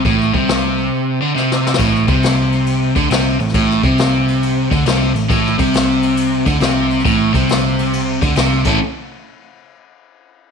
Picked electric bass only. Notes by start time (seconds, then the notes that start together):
0.05 A1
0.34 C2
1.79 A1
2.08 C2
2.96 D2
3.11 C2
3.40 A1
3.54 A1
3.83 C2
4.72 D2
4.85 C2
5.15 A1
5.30 A1
5.59 C2
6.46 D2
6.61 C2
7.05 A1
7.34 C2
8.22 D2
8.37 C2
8.65 A1